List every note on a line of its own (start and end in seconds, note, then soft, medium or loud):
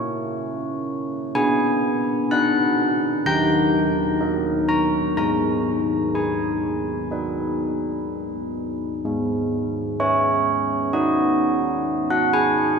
0.00 1.32 A#3 medium
0.00 1.31 C#4 medium
0.00 1.31 C#5 medium
0.00 1.32 F#5 medium
0.00 1.32 F#6 medium
1.35 3.20 B3 medium
1.35 2.27 G#5 loud
2.31 3.21 D#4 medium
2.31 3.21 B4 medium
2.31 3.22 F#5 medium
2.31 3.21 F#6 medium
3.26 5.13 D#3 medium
3.26 4.64 G5 medium
3.26 4.64 G6 loud
4.21 5.13 D#4 soft
4.21 5.13 A#4 medium
4.69 5.14 A#5 loud
5.17 9.02 G#3 medium
5.17 6.11 A#5 medium
6.14 7.70 G#4 soft
6.14 8.54 G#5 medium
7.11 9.01 D#4 soft
7.11 9.02 B4 soft
9.05 12.75 G#3 medium
10.00 11.49 G#4 medium
10.00 10.89 C#5 loud
10.93 12.76 D#4 medium
10.93 12.76 B4 medium
10.93 12.06 D#5 medium
12.10 12.33 F#5 loud
12.33 12.78 G#5 loud